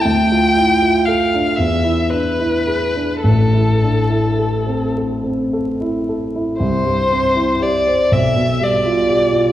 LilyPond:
<<
  \new Staff \with { instrumentName = "Violin" } { \time 6/8 \key a \minor \tempo 4. = 38 g''4 f''8 e''8 b'4 | a'4. r4. | \key c \major c''4 d''8 e''8 d''4 | }
  \new Staff \with { instrumentName = "Grand piano" } { \time 6/8 \key a \minor d,16 f'16 e'16 f'16 a'16 d'16 e,16 e'16 d'16 e'16 gis'16 d'16 | a,,16 e'16 d'16 e'16 a'16 c'16 a'16 c'16 a'16 e'16 a'16 e'16 | \key c \major c,16 g,16 c'16 e'16 g'16 c''16 b,,16 b,16 g16 f'16 g'16 f'16 | }
>>